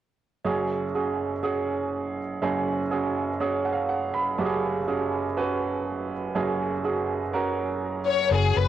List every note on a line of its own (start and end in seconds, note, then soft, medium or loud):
0.45 2.38 F#1 medium
0.45 2.38 F#2 soft
0.45 0.82 C#4 medium
0.45 0.83 F#4 medium
0.45 0.83 G#4 medium
0.95 1.32 C#4 medium
0.95 1.32 F#4 soft
0.95 1.32 G#4 medium
1.43 2.18 C#4 medium
1.43 2.18 F#4 medium
1.43 2.19 G#4 medium
2.42 4.34 F#1 medium
2.42 4.35 F#2 medium
2.42 2.79 C#4 medium
2.42 2.80 F#4 medium
2.42 2.80 G#4 medium
2.91 3.28 C#4 medium
2.91 3.29 F#4 medium
2.91 3.29 G#4 medium
3.40 4.15 C#4 medium
3.40 4.15 F#4 medium
3.40 4.16 G#4 medium
3.65 3.72 F#5 soft
3.73 3.88 F5 soft
3.89 4.12 F#5 medium
4.14 4.37 B5 medium
4.38 6.31 F#1 medium
4.38 6.31 F#2 medium
4.38 4.76 C#4 medium
4.38 4.76 F#4 medium
4.38 4.45 G4 medium
4.45 4.79 G#4 medium
4.88 5.25 C#4 medium
4.88 5.25 F#4 medium
4.88 5.25 G#4 medium
5.37 6.12 C#4 medium
5.37 6.12 F#4 medium
5.37 6.12 B4 medium
6.35 8.27 F#1 medium
6.35 8.27 F#2 medium
6.35 6.72 C#4 medium
6.35 6.73 F#4 medium
6.35 6.73 G#4 medium
6.84 7.22 C#4 medium
6.84 7.22 F#4 medium
6.84 7.22 G#4 medium
7.33 8.08 C#4 medium
7.33 8.08 F#4 medium
7.33 8.08 A#4 medium
8.07 8.30 C#5 medium
8.31 8.51 F#1 medium
8.31 8.68 C#4 medium
8.31 8.68 F#4 soft
8.31 8.68 G#4 medium
8.31 8.56 G#4 medium
8.56 8.68 F#1 medium
8.56 8.68 B4 medium